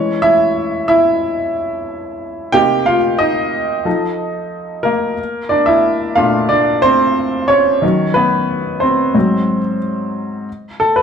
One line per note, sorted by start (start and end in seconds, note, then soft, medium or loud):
0.00 0.32 E3 soft
0.00 0.33 G#3 soft
0.00 0.33 C#4 medium
0.00 0.18 C#5 medium
0.22 0.85 E4 medium
0.22 0.87 E5 medium
0.88 2.50 E4 medium
0.88 2.59 E5 medium
2.52 2.97 C3 medium
2.52 2.97 A#3 medium
2.52 2.98 D#4 medium
2.52 2.85 G4 medium
2.52 2.87 G5 loud
2.86 3.18 F4 medium
2.86 3.20 F5 medium
3.19 3.85 D#4 medium
3.19 4.90 D#5 medium
3.85 5.14 F3 soft
3.85 5.14 D#4 medium
3.85 5.14 A4 soft
4.83 5.47 A#3 medium
4.83 5.52 A#4 medium
5.49 5.67 D4 medium
5.49 5.67 D5 medium
5.66 6.14 E4 medium
5.66 6.18 E5 medium
6.15 7.12 A#2 medium
6.15 7.12 A3 soft
6.15 6.49 D4 medium
6.15 6.48 F4 medium
6.15 6.51 F5 medium
6.49 6.81 D4 medium
6.49 6.80 D5 medium
6.82 7.46 C4 medium
6.82 7.45 C5 loud
7.48 7.82 C#4 medium
7.48 8.11 C#5 medium
7.82 8.26 D#3 medium
7.82 8.27 F#3 soft
7.82 8.27 C#4 medium
8.14 8.78 B3 medium
8.14 8.83 B4 medium
8.80 9.14 C4 medium
8.80 9.76 C5 medium
9.14 9.58 G#2 medium
9.14 9.59 F#3 soft
9.14 9.59 C4 medium
10.80 10.97 A4 medium
10.96 11.02 B4 medium